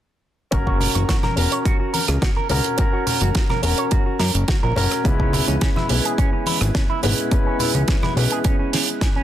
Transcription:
0.51 0.89 F#1 medium
0.51 1.33 C#4 medium
0.51 0.57 F#4 medium
0.51 1.34 F#4 medium
0.51 1.34 A#4 medium
0.51 kick loud
0.51 closed hi-hat medium
0.66 0.77 F#4 medium
0.66 kick medium
0.80 0.91 A#4 medium
0.80 open hi-hat loud
0.80 low conga medium
0.95 1.05 F#1 medium
0.95 1.02 F#4 medium
0.95 closed hi-hat medium
0.95 high conga medium
1.09 1.16 F#4 medium
1.09 kick loud
1.09 snare loud
1.09 closed hi-hat medium
1.23 1.34 A#4 medium
1.23 cross-stick medium
1.23 high conga medium
1.23 low conga medium
1.36 1.48 E1 medium
1.36 2.47 C#4 medium
1.36 2.47 F#4 medium
1.36 2.48 A#4 medium
1.36 open hi-hat medium
1.51 1.58 C#5 medium
1.51 closed hi-hat medium
1.65 1.76 F#4 medium
1.65 kick loud
1.65 closed hi-hat medium
1.80 1.90 F#4 medium
1.94 2.05 A#4 medium
1.94 open hi-hat medium
1.94 high conga medium
2.08 2.18 C#2 loud
2.08 cross-stick medium
2.08 closed hi-hat medium
2.22 2.29 F#4 medium
2.22 kick loud
2.22 snare loud
2.22 closed hi-hat medium
2.37 2.47 A#4 medium
2.49 2.61 C#2 medium
2.49 2.75 C#4 medium
2.49 2.75 F#4 medium
2.49 2.76 A#4 medium
2.49 open hi-hat medium
2.49 low conga medium
2.64 closed hi-hat medium
2.77 3.60 C#4 medium
2.77 2.83 F#4 medium
2.77 3.60 F#4 medium
2.77 3.61 A#4 medium
2.77 kick loud
2.77 closed hi-hat medium
2.93 3.03 F#4 medium
3.07 3.18 A#4 medium
3.07 open hi-hat medium
3.07 low conga medium
3.21 3.31 F#1 medium
3.21 3.28 F#4 medium
3.21 closed hi-hat medium
3.21 high conga medium
3.35 3.42 F#4 medium
3.35 kick loud
3.35 snare loud
3.35 closed hi-hat medium
3.50 3.60 A#4 medium
3.50 cross-stick medium
3.50 high conga medium
3.50 low conga medium
3.62 3.74 E1 medium
3.62 4.73 C#4 medium
3.62 4.73 F#4 medium
3.62 4.74 A#4 medium
3.62 open hi-hat medium
3.78 3.85 C#5 medium
3.78 closed hi-hat medium
3.91 4.03 F#4 medium
3.91 kick loud
3.91 closed hi-hat medium
4.06 4.17 F#4 medium
4.19 4.31 F#2 medium
4.19 4.31 A#4 medium
4.19 snare medium
4.19 open hi-hat medium
4.34 4.45 F#1 loud
4.34 closed hi-hat medium
4.48 4.56 F#4 medium
4.48 kick loud
4.48 snare loud
4.48 closed hi-hat medium
4.63 4.73 A#1 medium
4.63 4.73 A#4 medium
4.76 4.87 F#1 loud
4.76 5.01 C#4 medium
4.76 5.02 F#4 medium
4.76 5.02 A#4 medium
4.76 open hi-hat medium
4.76 low conga medium
4.91 cross-stick medium
4.91 closed hi-hat medium
5.04 5.42 C#2 medium
5.04 5.86 G#3 medium
5.04 5.86 B3 medium
5.04 5.09 C#4 medium
5.04 5.87 C#4 medium
5.04 5.87 E4 medium
5.04 5.87 B4 medium
5.04 kick loud
5.04 closed hi-hat medium
5.20 5.30 C#4 medium
5.20 kick medium
5.33 5.44 E4 medium
5.33 open hi-hat loud
5.33 low conga medium
5.48 5.58 C#2 medium
5.48 5.55 C#4 loud
5.48 closed hi-hat medium
5.48 high conga medium
5.61 5.69 C#4 medium
5.61 kick loud
5.61 snare loud
5.61 closed hi-hat medium
5.76 5.86 E4 medium
5.76 cross-stick medium
5.76 high conga medium
5.76 low conga medium
5.89 6.01 B1 medium
5.89 6.99 G#3 medium
5.89 7.00 B3 medium
5.89 7.00 C#4 medium
5.89 7.00 E4 medium
5.89 7.00 B4 medium
5.89 open hi-hat medium
6.05 6.12 G#4 medium
6.05 closed hi-hat medium
6.18 6.29 C#4 medium
6.18 kick loud
6.18 closed hi-hat medium
6.33 6.43 C#4 medium
6.46 6.58 E4 medium
6.46 open hi-hat medium
6.46 high conga medium
6.61 6.71 G#1 loud
6.61 cross-stick medium
6.61 closed hi-hat medium
6.75 6.82 C#4 medium
6.75 kick loud
6.75 snare loud
6.75 closed hi-hat medium
6.90 7.00 E4 medium
7.03 7.14 G#1 medium
7.03 7.28 G#3 medium
7.03 7.28 B3 medium
7.03 7.28 C#4 medium
7.03 7.28 E4 medium
7.03 7.28 B4 medium
7.03 open hi-hat loud
7.03 low conga medium
7.18 closed hi-hat medium
7.31 8.13 G#3 medium
7.31 8.13 B3 medium
7.31 7.36 C#4 medium
7.31 8.13 C#4 medium
7.31 8.13 E4 medium
7.31 8.14 B4 medium
7.31 kick loud
7.31 closed hi-hat medium
7.46 7.56 C#4 medium
7.59 7.71 E4 medium
7.59 open hi-hat medium
7.59 low conga medium
7.74 7.84 C#2 medium
7.74 7.81 C#4 medium
7.74 closed hi-hat medium
7.74 high conga medium
7.88 7.96 C#4 medium
7.88 kick loud
7.88 snare loud
7.88 closed hi-hat medium
8.03 8.13 E4 medium
8.03 cross-stick medium
8.03 high conga medium
8.03 low conga medium
8.16 8.27 B1 medium
8.16 9.23 G#3 medium
8.16 9.23 B3 medium
8.16 9.23 C#4 medium
8.16 9.23 E4 medium
8.16 9.23 B4 medium
8.16 open hi-hat medium
8.31 8.38 G#4 medium
8.31 closed hi-hat medium
8.44 8.56 C#4 medium
8.44 kick loud
8.44 closed hi-hat medium
8.59 8.70 C#4 medium
8.73 8.80 C#4 medium
8.73 snare medium
8.73 open hi-hat loud
8.88 closed hi-hat medium
9.01 9.09 C#4 medium
9.01 kick loud
9.01 snare loud
9.01 closed hi-hat medium
9.16 9.23 C#4 medium

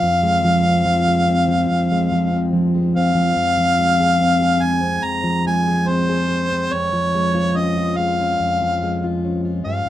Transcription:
0.00 1.69 F2 medium
0.00 0.44 F3 medium
0.00 2.54 F5 medium
0.23 1.06 G#3 medium
0.44 0.84 F3 medium
0.66 1.27 C4 medium
0.86 1.47 F3 medium
1.08 1.91 G#3 medium
1.28 2.32 C4 medium
1.48 2.11 F3 medium
1.70 3.35 F2 medium
1.92 2.73 G#3 medium
2.12 2.52 F3 medium
2.33 2.95 C4 soft
2.53 3.14 F3 medium
2.75 3.78 G#3 medium
2.96 4.20 C4 medium
2.96 4.64 F5 loud
3.15 3.32 F3 medium
3.36 5.03 F2 medium
3.57 5.23 F3 medium
3.79 4.62 G#3 medium
4.00 4.41 G#4 medium
4.21 4.82 C4 soft
4.42 5.66 G#4 medium
4.62 5.45 G#3 medium
4.62 5.06 G#5 medium
4.83 5.87 C4 soft
5.03 6.71 F2 medium
5.03 5.46 A#5 medium
5.24 6.93 F3 soft
5.46 6.30 G#3 medium
5.46 5.90 G#5 medium
5.67 6.08 G#4 soft
5.88 6.51 C4 medium
5.88 6.74 C5 medium
6.09 6.67 G#4 medium
6.31 7.14 G#3 medium
6.52 6.73 C4 soft
6.72 8.39 F2 medium
6.72 7.58 C#5 medium
6.93 8.60 F3 medium
7.15 7.97 G#3 soft
7.35 7.77 F4 medium
7.56 8.20 C#4 medium
7.56 7.98 D#5 medium
7.77 9.02 F4 medium
7.97 8.82 G#3 medium
7.97 9.23 F5 medium
8.20 9.23 C#4 soft
8.40 9.65 F2 medium
8.62 9.89 F3 soft
8.83 9.89 G#3 soft
9.04 9.44 F4 medium
9.24 9.89 C#4 soft
9.45 9.89 F4 medium
9.65 9.85 G2 medium
9.65 9.89 F5 loud
9.86 9.89 G#2 medium

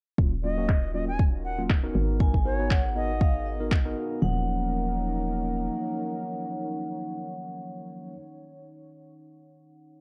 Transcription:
0.18 1.93 D#1 medium
0.18 0.33 F#3 medium
0.18 0.33 A#3 medium
0.18 1.93 C#4 medium
0.18 0.33 C#4 medium
0.18 4.18 D#4 medium
0.18 2.87 D#4 medium
0.18 1.93 F4 medium
0.18 0.33 F4 medium
0.18 1.93 F#4 medium
0.18 4.18 A#4 medium
0.18 kick loud
0.44 0.56 F#3 medium
0.44 0.56 A#3 medium
0.44 0.56 C#4 medium
0.44 0.56 F4 medium
0.44 2.87 C#5 medium
0.44 0.92 D#5 medium
0.58 0.69 F#3 medium
0.58 0.69 A#3 medium
0.58 0.69 C#4 medium
0.58 0.69 F#4 medium
0.69 kick loud
0.69 clap loud
0.94 1.08 F#3 medium
0.94 1.08 A#3 medium
0.94 1.08 C#4 medium
0.94 1.08 F4 medium
0.94 1.05 D#5 medium
1.08 1.23 G#5 medium
1.19 kick loud
1.45 1.62 F#5 medium
1.58 1.70 F#3 medium
1.58 1.70 A#3 medium
1.58 1.70 C#4 medium
1.58 1.70 F4 medium
1.70 kick loud
1.70 clap loud
1.84 2.17 B3 medium
1.84 2.17 D#4 medium
1.84 2.17 F#4 medium
1.84 2.17 A#4 loud
1.95 3.94 G#1 medium
1.95 4.22 B3 medium
1.95 4.20 B3 medium
1.95 4.20 F#4 medium
1.95 4.20 G#4 medium
2.20 2.34 B3 medium
2.20 2.34 D#4 medium
2.20 2.34 F#4 medium
2.20 2.34 A#4 medium
2.20 2.72 G#5 loud
2.20 kick loud
2.25 4.22 G#4 medium
2.34 kick medium
2.45 2.57 B3 medium
2.45 2.57 D#4 medium
2.45 2.57 F#4 medium
2.45 2.57 A#4 medium
2.45 2.84 C#5 medium
2.59 2.71 B3 medium
2.59 2.71 D#4 medium
2.59 2.71 F#4 medium
2.59 2.71 B4 medium
2.71 3.23 F#5 medium
2.71 kick loud
2.71 clap loud
2.96 3.10 B3 medium
2.96 3.10 D#4 medium
2.96 3.10 F#4 medium
2.96 3.10 A#4 medium
2.96 3.67 D#5 loud
3.21 3.47 F5 medium
3.21 kick loud
3.46 3.93 D#5 medium
3.60 3.72 B3 medium
3.60 3.72 D#4 medium
3.60 3.72 F#4 medium
3.60 3.72 A#4 medium
3.71 kick loud
3.71 clap loud
3.85 4.19 B3 medium
3.85 4.19 D#4 medium
3.85 4.19 F#4 medium
3.85 4.19 A#4 loud
4.22 5.69 D#1 medium
4.22 8.13 F3 medium
4.22 8.13 F#3 medium
4.22 8.13 A#3 medium
4.22 8.13 C#4 medium
4.22 8.13 D#4 medium
4.22 8.13 A#4 medium
4.22 8.13 F#5 medium
4.30 8.21 C#5 medium

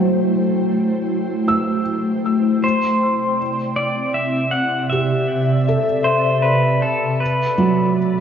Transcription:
0.00 1.82 F#3 medium
0.00 2.64 A3 medium
0.00 4.38 E4 medium
0.00 2.63 C5 medium
0.00 4.05 G5 medium
1.48 3.36 E6 medium
2.63 7.20 C3 medium
2.63 3.76 C5 medium
2.72 7.21 C4 medium
2.91 8.20 D5 medium
3.59 8.20 E5 medium
3.76 4.17 D5 medium
4.14 4.55 E5 loud
4.51 4.88 F#5 loud
4.90 5.84 G4 medium
4.90 6.09 E5 loud
5.68 7.55 A4 medium
6.04 6.45 C5 medium
6.42 6.83 B4 medium
6.82 7.22 A4 medium
7.18 8.20 B2 medium
7.18 7.92 B4 medium
7.38 8.20 A3 medium
7.58 8.20 F#3 medium
7.79 8.20 A4 medium

